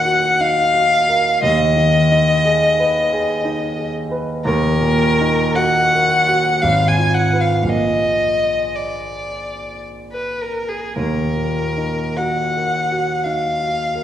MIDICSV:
0, 0, Header, 1, 3, 480
1, 0, Start_track
1, 0, Key_signature, -6, "minor"
1, 0, Tempo, 1025641
1, 667, Time_signature, 3, 2, 24, 8
1, 1144, Tempo, 998336
1, 2104, Tempo, 1115242
1, 2584, Tempo, 1069519
1, 4504, Tempo, 1125704
1, 4984, Tempo, 1200000
1, 5464, Tempo, 1090909
1, 5944, Tempo, 1027397
1, 6310, End_track
2, 0, Start_track
2, 0, Title_t, "Violin"
2, 0, Program_c, 0, 40
2, 0, Note_on_c, 0, 78, 96
2, 190, Note_on_c, 0, 77, 111
2, 197, Note_off_c, 0, 78, 0
2, 666, Note_off_c, 0, 77, 0
2, 669, Note_on_c, 0, 75, 102
2, 1843, Note_off_c, 0, 75, 0
2, 2105, Note_on_c, 0, 70, 111
2, 2583, Note_on_c, 0, 78, 103
2, 2589, Note_off_c, 0, 70, 0
2, 3061, Note_on_c, 0, 77, 96
2, 3068, Note_off_c, 0, 78, 0
2, 3177, Note_on_c, 0, 80, 88
2, 3184, Note_off_c, 0, 77, 0
2, 3294, Note_on_c, 0, 78, 83
2, 3301, Note_off_c, 0, 80, 0
2, 3414, Note_on_c, 0, 77, 72
2, 3421, Note_off_c, 0, 78, 0
2, 3540, Note_on_c, 0, 75, 87
2, 3547, Note_off_c, 0, 77, 0
2, 4019, Note_on_c, 0, 74, 64
2, 4026, Note_off_c, 0, 75, 0
2, 4507, Note_off_c, 0, 74, 0
2, 4627, Note_on_c, 0, 71, 62
2, 4751, Note_on_c, 0, 70, 65
2, 4758, Note_off_c, 0, 71, 0
2, 4866, Note_on_c, 0, 68, 59
2, 4872, Note_off_c, 0, 70, 0
2, 4985, Note_off_c, 0, 68, 0
2, 4987, Note_on_c, 0, 70, 75
2, 5467, Note_on_c, 0, 78, 73
2, 5474, Note_off_c, 0, 70, 0
2, 5939, Note_on_c, 0, 77, 78
2, 5946, Note_off_c, 0, 78, 0
2, 6310, Note_off_c, 0, 77, 0
2, 6310, End_track
3, 0, Start_track
3, 0, Title_t, "Grand piano"
3, 0, Program_c, 1, 0
3, 0, Control_c, 1, 64, 127
3, 0, Note_on_c, 1, 39, 68
3, 0, Note_on_c, 1, 46, 50
3, 0, Note_on_c, 1, 63, 51
3, 0, Note_on_c, 1, 66, 52
3, 0, Note_on_c, 1, 70, 63
3, 24, Note_off_c, 1, 66, 0
3, 24, Note_on_c, 1, 66, 62
3, 125, Note_off_c, 1, 70, 0
3, 188, Note_off_c, 1, 63, 0
3, 188, Note_on_c, 1, 63, 57
3, 286, Note_off_c, 1, 66, 0
3, 344, Note_on_c, 1, 66, 45
3, 446, Note_off_c, 1, 63, 0
3, 505, Note_on_c, 1, 70, 63
3, 602, Note_off_c, 1, 66, 0
3, 647, Note_off_c, 1, 39, 0
3, 665, Note_off_c, 1, 70, 0
3, 666, Note_on_c, 1, 39, 79
3, 676, Control_c, 1, 64, 0
3, 678, Note_off_c, 1, 46, 0
3, 758, Control_c, 1, 64, 127
3, 826, Note_on_c, 1, 51, 55
3, 989, Note_on_c, 1, 63, 55
3, 1081, Note_off_c, 1, 51, 0
3, 1146, Note_on_c, 1, 68, 57
3, 1245, Note_off_c, 1, 63, 0
3, 1311, Note_on_c, 1, 71, 63
3, 1406, Note_off_c, 1, 68, 0
3, 1471, Note_on_c, 1, 68, 68
3, 1566, Note_off_c, 1, 71, 0
3, 1627, Note_on_c, 1, 63, 64
3, 1722, Note_off_c, 1, 68, 0
3, 1787, Note_on_c, 1, 68, 54
3, 1877, Note_off_c, 1, 63, 0
3, 1945, Note_on_c, 1, 71, 66
3, 2040, Note_off_c, 1, 68, 0
3, 2084, Note_off_c, 1, 39, 0
3, 2105, Note_off_c, 1, 71, 0
3, 2108, Note_on_c, 1, 39, 87
3, 2111, Control_c, 1, 64, 0
3, 2180, Control_c, 1, 64, 127
3, 2261, Note_on_c, 1, 46, 64
3, 2434, Note_on_c, 1, 63, 60
3, 2522, Note_off_c, 1, 46, 0
3, 2589, Note_on_c, 1, 66, 59
3, 2687, Note_off_c, 1, 63, 0
3, 2756, Note_on_c, 1, 70, 65
3, 2842, Note_off_c, 1, 66, 0
3, 2909, Note_on_c, 1, 66, 60
3, 3001, Note_off_c, 1, 70, 0
3, 3043, Note_off_c, 1, 39, 0
3, 3062, Note_off_c, 1, 66, 0
3, 3065, Control_c, 1, 64, 0
3, 3066, Note_on_c, 1, 32, 70
3, 3131, Control_c, 1, 64, 127
3, 3221, Note_on_c, 1, 65, 49
3, 3372, Note_off_c, 1, 65, 0
3, 3379, Note_on_c, 1, 65, 51
3, 3379, Note_on_c, 1, 71, 52
3, 3514, Note_on_c, 1, 34, 59
3, 3516, Note_off_c, 1, 65, 0
3, 3521, Note_off_c, 1, 71, 0
3, 3523, Note_on_c, 1, 65, 49
3, 3524, Note_off_c, 1, 32, 0
3, 3531, Note_on_c, 1, 70, 47
3, 3543, Control_c, 1, 64, 0
3, 3628, Control_c, 1, 64, 127
3, 4958, Note_off_c, 1, 34, 0
3, 4964, Note_off_c, 1, 65, 0
3, 4966, Note_off_c, 1, 70, 0
3, 4984, Note_on_c, 1, 39, 65
3, 4992, Control_c, 1, 64, 0
3, 5054, Control_c, 1, 64, 127
3, 5145, Note_on_c, 1, 46, 43
3, 5309, Note_on_c, 1, 63, 40
3, 5404, Note_off_c, 1, 46, 0
3, 5474, Note_on_c, 1, 66, 42
3, 5569, Note_off_c, 1, 63, 0
3, 5638, Note_on_c, 1, 70, 45
3, 5733, Note_off_c, 1, 66, 0
3, 5798, Note_on_c, 1, 66, 47
3, 5886, Note_off_c, 1, 70, 0
3, 5947, Note_on_c, 1, 63, 39
3, 6044, Note_off_c, 1, 66, 0
3, 6108, Note_on_c, 1, 66, 39
3, 6202, Note_off_c, 1, 63, 0
3, 6266, Note_on_c, 1, 70, 46
3, 6310, Note_off_c, 1, 39, 0
3, 6310, Note_off_c, 1, 66, 0
3, 6310, Note_off_c, 1, 70, 0
3, 6310, End_track
0, 0, End_of_file